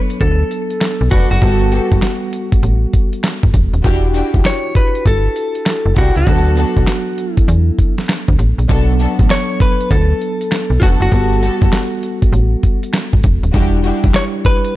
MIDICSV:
0, 0, Header, 1, 6, 480
1, 0, Start_track
1, 0, Tempo, 606061
1, 1125, Time_signature, 4, 2, 24, 8
1, 11690, End_track
2, 0, Start_track
2, 0, Title_t, "Clean electric guitar"
2, 0, Program_c, 0, 27
2, 166, Note_on_c, 0, 69, 94
2, 854, Note_off_c, 0, 69, 0
2, 880, Note_on_c, 0, 66, 83
2, 1028, Note_off_c, 0, 66, 0
2, 1038, Note_on_c, 0, 66, 75
2, 2447, Note_off_c, 0, 66, 0
2, 3535, Note_on_c, 0, 73, 97
2, 3753, Note_off_c, 0, 73, 0
2, 3773, Note_on_c, 0, 71, 97
2, 3992, Note_off_c, 0, 71, 0
2, 4016, Note_on_c, 0, 69, 100
2, 4699, Note_off_c, 0, 69, 0
2, 4738, Note_on_c, 0, 66, 86
2, 4876, Note_off_c, 0, 66, 0
2, 4888, Note_on_c, 0, 66, 74
2, 5807, Note_off_c, 0, 66, 0
2, 5807, Note_on_c, 0, 64, 74
2, 6292, Note_off_c, 0, 64, 0
2, 7375, Note_on_c, 0, 73, 99
2, 7593, Note_off_c, 0, 73, 0
2, 7616, Note_on_c, 0, 71, 90
2, 7834, Note_off_c, 0, 71, 0
2, 7853, Note_on_c, 0, 69, 97
2, 8552, Note_on_c, 0, 65, 57
2, 8568, Note_off_c, 0, 69, 0
2, 8569, Note_off_c, 0, 65, 0
2, 8576, Note_on_c, 0, 66, 86
2, 8616, Note_off_c, 0, 66, 0
2, 8729, Note_on_c, 0, 66, 68
2, 10132, Note_off_c, 0, 66, 0
2, 11214, Note_on_c, 0, 73, 93
2, 11278, Note_off_c, 0, 73, 0
2, 11452, Note_on_c, 0, 71, 104
2, 11690, Note_off_c, 0, 71, 0
2, 11690, End_track
3, 0, Start_track
3, 0, Title_t, "String section"
3, 0, Program_c, 1, 48
3, 882, Note_on_c, 1, 62, 77
3, 883, Note_on_c, 1, 66, 75
3, 885, Note_on_c, 1, 69, 79
3, 886, Note_on_c, 1, 71, 93
3, 1062, Note_off_c, 1, 62, 0
3, 1063, Note_off_c, 1, 66, 0
3, 1064, Note_off_c, 1, 69, 0
3, 1064, Note_off_c, 1, 71, 0
3, 1120, Note_on_c, 1, 59, 89
3, 1122, Note_on_c, 1, 66, 83
3, 1124, Note_on_c, 1, 67, 82
3, 1126, Note_on_c, 1, 69, 104
3, 1301, Note_off_c, 1, 59, 0
3, 1302, Note_off_c, 1, 66, 0
3, 1303, Note_off_c, 1, 67, 0
3, 1304, Note_off_c, 1, 69, 0
3, 1364, Note_on_c, 1, 59, 73
3, 1364, Note_on_c, 1, 66, 70
3, 1366, Note_on_c, 1, 67, 62
3, 1368, Note_on_c, 1, 69, 79
3, 1543, Note_off_c, 1, 59, 0
3, 1543, Note_off_c, 1, 66, 0
3, 1544, Note_off_c, 1, 67, 0
3, 1545, Note_off_c, 1, 69, 0
3, 3042, Note_on_c, 1, 62, 89
3, 3043, Note_on_c, 1, 64, 81
3, 3046, Note_on_c, 1, 66, 85
3, 3047, Note_on_c, 1, 67, 102
3, 3222, Note_off_c, 1, 62, 0
3, 3223, Note_off_c, 1, 64, 0
3, 3224, Note_off_c, 1, 66, 0
3, 3225, Note_off_c, 1, 67, 0
3, 3283, Note_on_c, 1, 62, 69
3, 3284, Note_on_c, 1, 64, 63
3, 3286, Note_on_c, 1, 66, 68
3, 3288, Note_on_c, 1, 67, 81
3, 3463, Note_off_c, 1, 62, 0
3, 3463, Note_off_c, 1, 64, 0
3, 3464, Note_off_c, 1, 66, 0
3, 3465, Note_off_c, 1, 67, 0
3, 4722, Note_on_c, 1, 62, 82
3, 4725, Note_on_c, 1, 64, 76
3, 4726, Note_on_c, 1, 66, 74
3, 4728, Note_on_c, 1, 67, 85
3, 4902, Note_off_c, 1, 62, 0
3, 4904, Note_off_c, 1, 64, 0
3, 4904, Note_off_c, 1, 66, 0
3, 4905, Note_off_c, 1, 67, 0
3, 4963, Note_on_c, 1, 59, 94
3, 4965, Note_on_c, 1, 62, 81
3, 4966, Note_on_c, 1, 66, 84
3, 4969, Note_on_c, 1, 69, 105
3, 5143, Note_off_c, 1, 59, 0
3, 5144, Note_off_c, 1, 62, 0
3, 5144, Note_off_c, 1, 66, 0
3, 5146, Note_off_c, 1, 69, 0
3, 5203, Note_on_c, 1, 59, 75
3, 5203, Note_on_c, 1, 62, 67
3, 5205, Note_on_c, 1, 66, 64
3, 5207, Note_on_c, 1, 69, 81
3, 5383, Note_off_c, 1, 59, 0
3, 5383, Note_off_c, 1, 62, 0
3, 5384, Note_off_c, 1, 66, 0
3, 5385, Note_off_c, 1, 69, 0
3, 6882, Note_on_c, 1, 59, 86
3, 6884, Note_on_c, 1, 62, 81
3, 6885, Note_on_c, 1, 66, 84
3, 6887, Note_on_c, 1, 69, 100
3, 7062, Note_off_c, 1, 59, 0
3, 7063, Note_off_c, 1, 62, 0
3, 7064, Note_off_c, 1, 66, 0
3, 7065, Note_off_c, 1, 69, 0
3, 7122, Note_on_c, 1, 59, 72
3, 7122, Note_on_c, 1, 62, 66
3, 7125, Note_on_c, 1, 66, 64
3, 7127, Note_on_c, 1, 69, 79
3, 7302, Note_off_c, 1, 59, 0
3, 7302, Note_off_c, 1, 62, 0
3, 7304, Note_off_c, 1, 66, 0
3, 7305, Note_off_c, 1, 69, 0
3, 8562, Note_on_c, 1, 59, 83
3, 8563, Note_on_c, 1, 62, 75
3, 8565, Note_on_c, 1, 66, 79
3, 8567, Note_on_c, 1, 69, 91
3, 8742, Note_off_c, 1, 59, 0
3, 8743, Note_off_c, 1, 62, 0
3, 8744, Note_off_c, 1, 66, 0
3, 8745, Note_off_c, 1, 69, 0
3, 8802, Note_on_c, 1, 59, 95
3, 8803, Note_on_c, 1, 66, 88
3, 8806, Note_on_c, 1, 67, 84
3, 8807, Note_on_c, 1, 69, 94
3, 8982, Note_off_c, 1, 59, 0
3, 8983, Note_off_c, 1, 66, 0
3, 8984, Note_off_c, 1, 67, 0
3, 8985, Note_off_c, 1, 69, 0
3, 9042, Note_on_c, 1, 59, 74
3, 9043, Note_on_c, 1, 66, 72
3, 9046, Note_on_c, 1, 67, 71
3, 9047, Note_on_c, 1, 69, 88
3, 9222, Note_off_c, 1, 59, 0
3, 9223, Note_off_c, 1, 66, 0
3, 9224, Note_off_c, 1, 67, 0
3, 9225, Note_off_c, 1, 69, 0
3, 10725, Note_on_c, 1, 62, 85
3, 10728, Note_on_c, 1, 64, 79
3, 10729, Note_on_c, 1, 66, 91
3, 10731, Note_on_c, 1, 67, 103
3, 10904, Note_off_c, 1, 62, 0
3, 10905, Note_off_c, 1, 64, 0
3, 10906, Note_off_c, 1, 66, 0
3, 10907, Note_off_c, 1, 67, 0
3, 10967, Note_on_c, 1, 62, 76
3, 10968, Note_on_c, 1, 64, 70
3, 10969, Note_on_c, 1, 66, 68
3, 10972, Note_on_c, 1, 67, 79
3, 11145, Note_off_c, 1, 62, 0
3, 11145, Note_off_c, 1, 64, 0
3, 11146, Note_off_c, 1, 66, 0
3, 11147, Note_off_c, 1, 67, 0
3, 11690, End_track
4, 0, Start_track
4, 0, Title_t, "Tine electric piano"
4, 0, Program_c, 2, 4
4, 0, Control_c, 2, 64, 127
4, 0, Note_on_c, 2, 54, 75
4, 0, Note_on_c, 2, 59, 64
4, 0, Note_on_c, 2, 62, 68
4, 0, Note_on_c, 2, 69, 84
4, 1093, Note_off_c, 2, 54, 0
4, 1096, Note_off_c, 2, 59, 0
4, 1100, Note_off_c, 2, 62, 0
4, 1102, Note_off_c, 2, 69, 0
4, 1121, Note_on_c, 2, 55, 69
4, 1127, Note_on_c, 2, 59, 55
4, 1133, Note_on_c, 2, 66, 57
4, 1135, Control_c, 2, 64, 0
4, 1139, Note_on_c, 2, 69, 68
4, 1281, Control_c, 2, 64, 127
4, 3011, Note_off_c, 2, 55, 0
4, 3014, Note_off_c, 2, 59, 0
4, 3017, Note_off_c, 2, 66, 0
4, 3020, Note_off_c, 2, 69, 0
4, 3043, Note_on_c, 2, 66, 80
4, 3049, Note_on_c, 2, 62, 73
4, 3056, Control_c, 2, 64, 0
4, 3057, Note_on_c, 2, 64, 72
4, 3063, Note_on_c, 2, 67, 79
4, 3192, Control_c, 2, 64, 127
4, 4932, Note_off_c, 2, 66, 0
4, 4935, Note_off_c, 2, 62, 0
4, 4939, Note_off_c, 2, 64, 0
4, 4942, Note_off_c, 2, 67, 0
4, 4961, Note_on_c, 2, 54, 63
4, 4967, Note_on_c, 2, 59, 59
4, 4973, Note_on_c, 2, 62, 59
4, 4976, Control_c, 2, 64, 0
4, 4980, Note_on_c, 2, 69, 76
4, 5103, Control_c, 2, 64, 127
4, 6851, Note_off_c, 2, 54, 0
4, 6854, Note_off_c, 2, 59, 0
4, 6857, Note_off_c, 2, 62, 0
4, 6861, Note_off_c, 2, 69, 0
4, 6883, Note_on_c, 2, 54, 76
4, 6888, Note_on_c, 2, 59, 72
4, 6895, Note_on_c, 2, 62, 67
4, 6896, Control_c, 2, 64, 0
4, 6902, Note_on_c, 2, 69, 80
4, 7044, Control_c, 2, 64, 127
4, 8772, Note_off_c, 2, 54, 0
4, 8775, Note_off_c, 2, 59, 0
4, 8778, Note_off_c, 2, 62, 0
4, 8782, Note_off_c, 2, 69, 0
4, 8799, Note_on_c, 2, 55, 66
4, 8807, Note_on_c, 2, 59, 59
4, 8812, Note_on_c, 2, 66, 57
4, 8815, Control_c, 2, 64, 0
4, 8820, Note_on_c, 2, 69, 76
4, 8955, Control_c, 2, 64, 127
4, 10690, Note_off_c, 2, 55, 0
4, 10694, Note_off_c, 2, 59, 0
4, 10697, Note_off_c, 2, 66, 0
4, 10701, Note_off_c, 2, 69, 0
4, 10722, Note_on_c, 2, 55, 76
4, 10730, Note_on_c, 2, 62, 73
4, 10734, Control_c, 2, 64, 0
4, 10736, Note_on_c, 2, 64, 69
4, 10742, Note_on_c, 2, 67, 88
4, 10868, Control_c, 2, 64, 127
4, 11690, Note_off_c, 2, 55, 0
4, 11690, Note_off_c, 2, 62, 0
4, 11690, Note_off_c, 2, 64, 0
4, 11690, Note_off_c, 2, 67, 0
4, 11690, End_track
5, 0, Start_track
5, 0, Title_t, "FM bass"
5, 0, Program_c, 3, 39
5, 164, Note_on_c, 3, 38, 102
5, 348, Note_off_c, 3, 38, 0
5, 799, Note_on_c, 3, 35, 88
5, 865, Note_off_c, 3, 35, 0
5, 886, Note_on_c, 3, 29, 85
5, 1004, Note_off_c, 3, 29, 0
5, 1038, Note_on_c, 3, 30, 85
5, 1104, Note_off_c, 3, 30, 0
5, 1122, Note_on_c, 3, 31, 113
5, 1425, Note_off_c, 3, 31, 0
5, 1517, Note_on_c, 3, 30, 89
5, 1583, Note_off_c, 3, 30, 0
5, 2082, Note_on_c, 3, 33, 91
5, 2267, Note_off_c, 3, 33, 0
5, 2719, Note_on_c, 3, 31, 83
5, 2784, Note_off_c, 3, 31, 0
5, 2805, Note_on_c, 3, 28, 84
5, 2923, Note_off_c, 3, 28, 0
5, 2958, Note_on_c, 3, 27, 88
5, 3024, Note_off_c, 3, 27, 0
5, 3045, Note_on_c, 3, 28, 105
5, 3347, Note_off_c, 3, 28, 0
5, 3438, Note_on_c, 3, 28, 87
5, 3504, Note_off_c, 3, 28, 0
5, 4003, Note_on_c, 3, 31, 100
5, 4187, Note_off_c, 3, 31, 0
5, 4637, Note_on_c, 3, 30, 92
5, 4703, Note_off_c, 3, 30, 0
5, 4724, Note_on_c, 3, 36, 93
5, 4843, Note_off_c, 3, 36, 0
5, 4882, Note_on_c, 3, 37, 79
5, 4946, Note_off_c, 3, 37, 0
5, 4964, Note_on_c, 3, 38, 114
5, 5266, Note_off_c, 3, 38, 0
5, 5358, Note_on_c, 3, 35, 90
5, 5424, Note_off_c, 3, 35, 0
5, 5925, Note_on_c, 3, 40, 101
5, 6108, Note_off_c, 3, 40, 0
5, 6561, Note_on_c, 3, 38, 86
5, 6625, Note_off_c, 3, 38, 0
5, 6642, Note_on_c, 3, 33, 92
5, 6761, Note_off_c, 3, 33, 0
5, 6798, Note_on_c, 3, 34, 85
5, 6864, Note_off_c, 3, 34, 0
5, 6884, Note_on_c, 3, 35, 110
5, 7186, Note_off_c, 3, 35, 0
5, 7280, Note_on_c, 3, 33, 87
5, 7345, Note_off_c, 3, 33, 0
5, 7847, Note_on_c, 3, 38, 108
5, 8030, Note_off_c, 3, 38, 0
5, 8476, Note_on_c, 3, 35, 83
5, 8542, Note_off_c, 3, 35, 0
5, 8568, Note_on_c, 3, 29, 88
5, 8686, Note_off_c, 3, 29, 0
5, 8715, Note_on_c, 3, 30, 90
5, 8782, Note_off_c, 3, 30, 0
5, 8807, Note_on_c, 3, 31, 106
5, 9108, Note_off_c, 3, 31, 0
5, 9200, Note_on_c, 3, 30, 92
5, 9265, Note_off_c, 3, 30, 0
5, 9761, Note_on_c, 3, 33, 94
5, 9946, Note_off_c, 3, 33, 0
5, 10400, Note_on_c, 3, 31, 78
5, 10465, Note_off_c, 3, 31, 0
5, 10486, Note_on_c, 3, 28, 90
5, 10604, Note_off_c, 3, 28, 0
5, 10639, Note_on_c, 3, 27, 85
5, 10704, Note_off_c, 3, 27, 0
5, 10724, Note_on_c, 3, 28, 107
5, 11027, Note_off_c, 3, 28, 0
5, 11119, Note_on_c, 3, 28, 86
5, 11184, Note_off_c, 3, 28, 0
5, 11690, End_track
6, 0, Start_track
6, 0, Title_t, "Drums"
6, 79, Note_on_c, 9, 42, 54
6, 158, Note_off_c, 9, 42, 0
6, 164, Note_on_c, 9, 36, 87
6, 166, Note_on_c, 9, 42, 66
6, 243, Note_off_c, 9, 36, 0
6, 246, Note_off_c, 9, 42, 0
6, 404, Note_on_c, 9, 42, 59
6, 483, Note_off_c, 9, 42, 0
6, 557, Note_on_c, 9, 42, 55
6, 636, Note_off_c, 9, 42, 0
6, 641, Note_on_c, 9, 42, 80
6, 643, Note_on_c, 9, 38, 112
6, 646, Note_on_c, 9, 39, 89
6, 720, Note_off_c, 9, 42, 0
6, 723, Note_off_c, 9, 38, 0
6, 725, Note_off_c, 9, 39, 0
6, 882, Note_on_c, 9, 42, 86
6, 885, Note_on_c, 9, 36, 106
6, 961, Note_off_c, 9, 42, 0
6, 964, Note_off_c, 9, 36, 0
6, 1041, Note_on_c, 9, 42, 47
6, 1120, Note_off_c, 9, 42, 0
6, 1123, Note_on_c, 9, 42, 69
6, 1124, Note_on_c, 9, 36, 112
6, 1202, Note_off_c, 9, 42, 0
6, 1203, Note_off_c, 9, 36, 0
6, 1362, Note_on_c, 9, 42, 58
6, 1441, Note_off_c, 9, 42, 0
6, 1518, Note_on_c, 9, 36, 79
6, 1518, Note_on_c, 9, 42, 49
6, 1597, Note_off_c, 9, 36, 0
6, 1597, Note_off_c, 9, 42, 0
6, 1601, Note_on_c, 9, 38, 117
6, 1602, Note_on_c, 9, 42, 81
6, 1604, Note_on_c, 9, 39, 85
6, 1680, Note_off_c, 9, 38, 0
6, 1681, Note_off_c, 9, 42, 0
6, 1683, Note_off_c, 9, 39, 0
6, 1844, Note_on_c, 9, 42, 76
6, 1924, Note_off_c, 9, 42, 0
6, 1998, Note_on_c, 9, 36, 102
6, 1998, Note_on_c, 9, 42, 52
6, 2077, Note_off_c, 9, 36, 0
6, 2077, Note_off_c, 9, 42, 0
6, 2084, Note_on_c, 9, 42, 71
6, 2163, Note_off_c, 9, 42, 0
6, 2324, Note_on_c, 9, 42, 61
6, 2325, Note_on_c, 9, 36, 85
6, 2403, Note_off_c, 9, 42, 0
6, 2404, Note_off_c, 9, 36, 0
6, 2478, Note_on_c, 9, 42, 56
6, 2557, Note_off_c, 9, 42, 0
6, 2562, Note_on_c, 9, 42, 75
6, 2564, Note_on_c, 9, 38, 108
6, 2567, Note_on_c, 9, 39, 89
6, 2641, Note_off_c, 9, 42, 0
6, 2643, Note_off_c, 9, 38, 0
6, 2646, Note_off_c, 9, 39, 0
6, 2719, Note_on_c, 9, 36, 91
6, 2798, Note_off_c, 9, 36, 0
6, 2801, Note_on_c, 9, 42, 83
6, 2804, Note_on_c, 9, 36, 106
6, 2880, Note_off_c, 9, 42, 0
6, 2883, Note_off_c, 9, 36, 0
6, 2959, Note_on_c, 9, 42, 49
6, 3038, Note_off_c, 9, 42, 0
6, 3043, Note_on_c, 9, 42, 66
6, 3044, Note_on_c, 9, 36, 98
6, 3122, Note_off_c, 9, 42, 0
6, 3124, Note_off_c, 9, 36, 0
6, 3282, Note_on_c, 9, 42, 62
6, 3361, Note_off_c, 9, 42, 0
6, 3439, Note_on_c, 9, 36, 87
6, 3439, Note_on_c, 9, 42, 51
6, 3518, Note_off_c, 9, 36, 0
6, 3518, Note_off_c, 9, 42, 0
6, 3524, Note_on_c, 9, 38, 109
6, 3524, Note_on_c, 9, 42, 77
6, 3526, Note_on_c, 9, 39, 88
6, 3603, Note_off_c, 9, 38, 0
6, 3604, Note_off_c, 9, 42, 0
6, 3606, Note_off_c, 9, 39, 0
6, 3764, Note_on_c, 9, 36, 101
6, 3764, Note_on_c, 9, 42, 72
6, 3843, Note_off_c, 9, 36, 0
6, 3843, Note_off_c, 9, 42, 0
6, 3921, Note_on_c, 9, 42, 53
6, 4000, Note_off_c, 9, 42, 0
6, 4005, Note_on_c, 9, 36, 91
6, 4005, Note_on_c, 9, 42, 71
6, 4084, Note_off_c, 9, 36, 0
6, 4085, Note_off_c, 9, 42, 0
6, 4244, Note_on_c, 9, 42, 61
6, 4323, Note_off_c, 9, 42, 0
6, 4396, Note_on_c, 9, 42, 59
6, 4475, Note_off_c, 9, 42, 0
6, 4481, Note_on_c, 9, 42, 81
6, 4483, Note_on_c, 9, 38, 120
6, 4486, Note_on_c, 9, 39, 88
6, 4560, Note_off_c, 9, 42, 0
6, 4563, Note_off_c, 9, 38, 0
6, 4565, Note_off_c, 9, 39, 0
6, 4721, Note_on_c, 9, 42, 86
6, 4724, Note_on_c, 9, 36, 100
6, 4800, Note_off_c, 9, 42, 0
6, 4804, Note_off_c, 9, 36, 0
6, 4878, Note_on_c, 9, 42, 52
6, 4957, Note_off_c, 9, 42, 0
6, 4961, Note_on_c, 9, 42, 67
6, 4964, Note_on_c, 9, 36, 104
6, 5041, Note_off_c, 9, 42, 0
6, 5044, Note_off_c, 9, 36, 0
6, 5203, Note_on_c, 9, 42, 60
6, 5282, Note_off_c, 9, 42, 0
6, 5358, Note_on_c, 9, 42, 51
6, 5359, Note_on_c, 9, 36, 83
6, 5438, Note_off_c, 9, 36, 0
6, 5438, Note_off_c, 9, 42, 0
6, 5443, Note_on_c, 9, 38, 112
6, 5444, Note_on_c, 9, 42, 72
6, 5446, Note_on_c, 9, 39, 93
6, 5522, Note_off_c, 9, 38, 0
6, 5523, Note_off_c, 9, 42, 0
6, 5525, Note_off_c, 9, 39, 0
6, 5686, Note_on_c, 9, 42, 78
6, 5765, Note_off_c, 9, 42, 0
6, 5840, Note_on_c, 9, 36, 98
6, 5842, Note_on_c, 9, 42, 57
6, 5919, Note_off_c, 9, 36, 0
6, 5921, Note_off_c, 9, 42, 0
6, 5929, Note_on_c, 9, 42, 75
6, 6008, Note_off_c, 9, 42, 0
6, 6166, Note_on_c, 9, 36, 80
6, 6166, Note_on_c, 9, 42, 60
6, 6245, Note_off_c, 9, 36, 0
6, 6245, Note_off_c, 9, 42, 0
6, 6320, Note_on_c, 9, 42, 54
6, 6323, Note_on_c, 9, 38, 59
6, 6399, Note_off_c, 9, 42, 0
6, 6402, Note_off_c, 9, 38, 0
6, 6406, Note_on_c, 9, 42, 80
6, 6408, Note_on_c, 9, 38, 112
6, 6410, Note_on_c, 9, 39, 91
6, 6485, Note_off_c, 9, 42, 0
6, 6487, Note_off_c, 9, 38, 0
6, 6490, Note_off_c, 9, 39, 0
6, 6560, Note_on_c, 9, 36, 103
6, 6640, Note_off_c, 9, 36, 0
6, 6647, Note_on_c, 9, 42, 88
6, 6726, Note_off_c, 9, 42, 0
6, 6803, Note_on_c, 9, 42, 47
6, 6882, Note_off_c, 9, 42, 0
6, 6884, Note_on_c, 9, 42, 67
6, 6885, Note_on_c, 9, 36, 101
6, 6963, Note_off_c, 9, 42, 0
6, 6964, Note_off_c, 9, 36, 0
6, 7127, Note_on_c, 9, 42, 63
6, 7206, Note_off_c, 9, 42, 0
6, 7280, Note_on_c, 9, 36, 86
6, 7284, Note_on_c, 9, 42, 51
6, 7359, Note_off_c, 9, 36, 0
6, 7363, Note_off_c, 9, 42, 0
6, 7367, Note_on_c, 9, 38, 110
6, 7368, Note_on_c, 9, 42, 77
6, 7370, Note_on_c, 9, 39, 84
6, 7446, Note_off_c, 9, 38, 0
6, 7447, Note_off_c, 9, 42, 0
6, 7449, Note_off_c, 9, 39, 0
6, 7606, Note_on_c, 9, 36, 96
6, 7609, Note_on_c, 9, 42, 74
6, 7685, Note_off_c, 9, 36, 0
6, 7688, Note_off_c, 9, 42, 0
6, 7766, Note_on_c, 9, 42, 54
6, 7845, Note_off_c, 9, 42, 0
6, 7847, Note_on_c, 9, 36, 93
6, 7851, Note_on_c, 9, 42, 71
6, 7926, Note_off_c, 9, 36, 0
6, 7930, Note_off_c, 9, 42, 0
6, 8090, Note_on_c, 9, 42, 59
6, 8169, Note_off_c, 9, 42, 0
6, 8245, Note_on_c, 9, 42, 55
6, 8324, Note_off_c, 9, 42, 0
6, 8328, Note_on_c, 9, 42, 78
6, 8330, Note_on_c, 9, 38, 116
6, 8333, Note_on_c, 9, 39, 91
6, 8407, Note_off_c, 9, 42, 0
6, 8409, Note_off_c, 9, 38, 0
6, 8412, Note_off_c, 9, 39, 0
6, 8568, Note_on_c, 9, 36, 102
6, 8570, Note_on_c, 9, 42, 90
6, 8647, Note_off_c, 9, 36, 0
6, 8649, Note_off_c, 9, 42, 0
6, 8728, Note_on_c, 9, 42, 52
6, 8807, Note_off_c, 9, 42, 0
6, 8807, Note_on_c, 9, 36, 107
6, 8810, Note_on_c, 9, 42, 68
6, 8887, Note_off_c, 9, 36, 0
6, 8889, Note_off_c, 9, 42, 0
6, 9051, Note_on_c, 9, 42, 66
6, 9130, Note_off_c, 9, 42, 0
6, 9202, Note_on_c, 9, 36, 92
6, 9208, Note_on_c, 9, 42, 49
6, 9281, Note_off_c, 9, 36, 0
6, 9287, Note_off_c, 9, 42, 0
6, 9287, Note_on_c, 9, 38, 121
6, 9288, Note_on_c, 9, 42, 77
6, 9290, Note_on_c, 9, 39, 93
6, 9367, Note_off_c, 9, 38, 0
6, 9367, Note_off_c, 9, 42, 0
6, 9369, Note_off_c, 9, 39, 0
6, 9527, Note_on_c, 9, 42, 73
6, 9607, Note_off_c, 9, 42, 0
6, 9680, Note_on_c, 9, 36, 97
6, 9683, Note_on_c, 9, 42, 54
6, 9760, Note_off_c, 9, 36, 0
6, 9762, Note_off_c, 9, 42, 0
6, 9769, Note_on_c, 9, 42, 73
6, 9848, Note_off_c, 9, 42, 0
6, 10005, Note_on_c, 9, 42, 58
6, 10006, Note_on_c, 9, 36, 78
6, 10084, Note_off_c, 9, 42, 0
6, 10085, Note_off_c, 9, 36, 0
6, 10162, Note_on_c, 9, 42, 54
6, 10242, Note_off_c, 9, 42, 0
6, 10243, Note_on_c, 9, 42, 72
6, 10245, Note_on_c, 9, 38, 117
6, 10248, Note_on_c, 9, 39, 92
6, 10322, Note_off_c, 9, 42, 0
6, 10324, Note_off_c, 9, 38, 0
6, 10327, Note_off_c, 9, 39, 0
6, 10401, Note_on_c, 9, 36, 100
6, 10481, Note_off_c, 9, 36, 0
6, 10482, Note_on_c, 9, 42, 88
6, 10486, Note_on_c, 9, 36, 105
6, 10561, Note_off_c, 9, 42, 0
6, 10565, Note_off_c, 9, 36, 0
6, 10640, Note_on_c, 9, 42, 50
6, 10719, Note_off_c, 9, 42, 0
6, 10723, Note_on_c, 9, 42, 66
6, 10724, Note_on_c, 9, 36, 104
6, 10802, Note_off_c, 9, 42, 0
6, 10804, Note_off_c, 9, 36, 0
6, 10960, Note_on_c, 9, 42, 63
6, 11040, Note_off_c, 9, 42, 0
6, 11117, Note_on_c, 9, 42, 52
6, 11119, Note_on_c, 9, 36, 92
6, 11196, Note_off_c, 9, 42, 0
6, 11198, Note_off_c, 9, 36, 0
6, 11201, Note_on_c, 9, 38, 111
6, 11201, Note_on_c, 9, 42, 80
6, 11204, Note_on_c, 9, 39, 87
6, 11280, Note_off_c, 9, 38, 0
6, 11281, Note_off_c, 9, 42, 0
6, 11283, Note_off_c, 9, 39, 0
6, 11442, Note_on_c, 9, 42, 74
6, 11444, Note_on_c, 9, 36, 94
6, 11522, Note_off_c, 9, 42, 0
6, 11523, Note_off_c, 9, 36, 0
6, 11599, Note_on_c, 9, 42, 58
6, 11678, Note_off_c, 9, 42, 0
6, 11690, End_track
0, 0, End_of_file